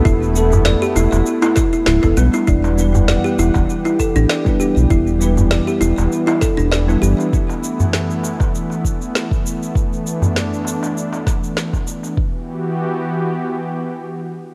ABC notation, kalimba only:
X:1
M:4/4
L:1/16
Q:"Swing 16ths" 1/4=99
K:Em
V:1 name="Kalimba"
E z3 d G E z2 E E E E E B, E | E z3 d G E z2 E A D d z G z | E z3 d G E z2 E A D d z G z | z16 |
z16 | z16 |]